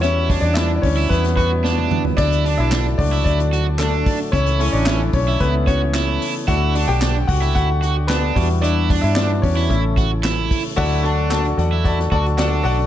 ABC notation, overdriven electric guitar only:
X:1
M:4/4
L:1/16
Q:1/4=112
K:D
V:1 name="Overdriven electric guitar"
E2 D2 D z2 E2 z F z D3 z | E2 D2 D z2 E2 z F z D3 z | E2 C2 C z2 E2 z F z E3 z | E2 D2 D z2 E2 z F z D3 z |
E2 D2 D z2 E2 z F z E3 z | E2 D2 D z2 E2 z F z D3 z |]